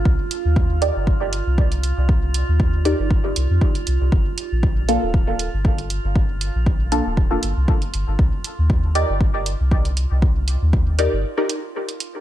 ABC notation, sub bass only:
X:1
M:4/4
L:1/16
Q:"Swing 16ths" 1/4=118
K:Cdor
V:1 name="Sub bass" clef=bass
C,, z2 E,,4 G,,,4 C,,4 C,,- | C,,3 E,,4 G,,,3 C,, F,, z2 C,, C,, | G,,, z2 B,,,4 D,,,4 G,,,4 G,,,- | G,,,3 B,,,4 D,,,3 G,,, C,, z2 G,,, G,,, |
C,, z2 E,,4 G,,,4 C,,4 C,,- | C,,3 E,,4 G,,, z8 |]